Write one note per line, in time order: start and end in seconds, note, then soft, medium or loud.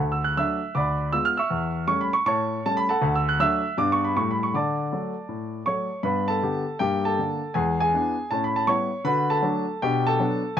0.00 0.30 D2 medium
0.00 0.10 A4 soft
0.00 0.10 F#5 soft
0.00 0.11 A5 soft
0.12 0.24 E6 medium
0.24 0.37 F#6 medium
0.37 0.58 F#3 soft
0.37 0.58 A3 soft
0.37 0.59 D4 soft
0.37 0.73 E5 medium
0.37 0.75 E6 medium
0.75 1.07 D2 medium
0.75 1.11 D5 medium
0.75 1.11 B5 medium
0.75 1.12 D6 medium
1.12 1.33 G#3 soft
1.12 1.34 B3 soft
1.12 1.34 F4 soft
1.12 1.25 E6 medium
1.25 1.38 F6 medium
1.37 1.85 E5 medium
1.37 1.85 C#6 medium
1.37 1.88 E6 medium
1.50 1.82 E2 medium
1.87 2.08 G3 soft
1.87 2.09 A3 medium
1.87 2.09 C#4 medium
1.87 2.00 C#6 medium
2.01 2.13 B5 medium
2.13 2.25 C#6 medium
2.26 2.58 A2 medium
2.26 2.62 C#5 medium
2.26 2.62 A5 medium
2.26 2.64 C#6 medium
2.66 2.86 G3 soft
2.66 2.86 A3 soft
2.66 2.86 C#4 soft
2.66 2.77 A5 medium
2.77 2.89 B5 medium
2.89 3.13 A4 medium
2.89 3.13 F#5 medium
2.89 3.14 A5 medium
3.02 3.34 D2 medium
3.15 3.27 E6 medium
3.29 3.40 F#6 medium
3.40 3.60 F#3 soft
3.40 3.61 A3 soft
3.40 3.61 D4 medium
3.40 3.75 E5 medium
3.40 3.78 E6 medium
3.78 4.10 G2 medium
3.78 3.98 G3 soft
3.78 3.98 B3 soft
3.78 3.99 D4 soft
3.78 3.90 D6 medium
3.92 4.04 C#6 medium
4.04 4.16 B5 medium
4.16 4.48 A2 medium
4.16 4.37 G3 soft
4.16 4.37 A3 soft
4.16 4.38 A4 soft
4.16 4.28 C#6 medium
4.31 4.42 B5 medium
4.43 4.54 C#6 medium
4.54 4.86 D3 medium
4.54 5.88 D5 medium
4.54 5.89 A5 medium
4.54 5.92 D6 medium
4.93 5.13 F#3 soft
4.93 5.13 A3 soft
4.93 5.13 A4 soft
5.29 5.61 A2 soft
5.66 5.87 F#3 soft
5.66 5.87 A3 soft
5.66 5.88 A4 soft
5.66 6.02 C#5 medium
5.66 6.04 C#6 medium
6.03 6.36 G2 medium
6.03 6.26 B3 soft
6.03 6.27 B4 medium
6.03 6.28 B5 medium
6.28 6.76 A4 medium
6.28 6.79 A5 medium
6.43 6.63 D3 soft
6.43 6.63 B3 soft
6.43 6.64 G4 soft
6.79 7.12 G2 medium
6.79 7.02 A#3 soft
6.79 7.04 G4 medium
6.79 7.04 G5 medium
7.05 7.52 A4 medium
7.05 7.55 A5 medium
7.18 7.39 D3 soft
7.18 7.39 A#3 soft
7.18 7.40 D4 soft
7.54 7.87 E2 medium
7.54 7.77 G#3 soft
7.54 7.78 G#4 medium
7.54 7.79 G#5 medium
7.80 8.28 G#4 medium
7.80 8.31 G#5 medium
7.94 8.14 E3 soft
7.94 8.15 B3 medium
7.94 8.15 D4 medium
8.31 8.63 A2 medium
8.31 8.53 C#4 medium
8.31 8.43 A5 medium
8.44 8.56 B5 medium
8.56 8.68 A5 medium
8.67 8.88 G3 soft
8.67 8.89 B3 soft
8.67 8.89 E4 soft
8.67 9.04 C#5 medium
8.67 9.05 C#6 medium
9.04 9.37 D3 medium
9.04 9.27 F#4 soft
9.04 9.29 B4 medium
9.04 9.30 B5 medium
9.30 9.78 A4 medium
9.30 9.81 A5 medium
9.42 9.63 F#3 medium
9.42 9.64 A3 medium
9.42 9.64 D4 medium
9.82 10.14 B2 medium
9.82 10.04 D4 soft
9.82 10.06 G4 medium
9.82 10.07 G5 medium
10.07 10.54 A4 medium
10.07 10.57 A5 medium
10.20 10.40 F#3 soft
10.20 10.41 B3 soft
10.20 10.40 D4 soft
10.57 10.60 E2 medium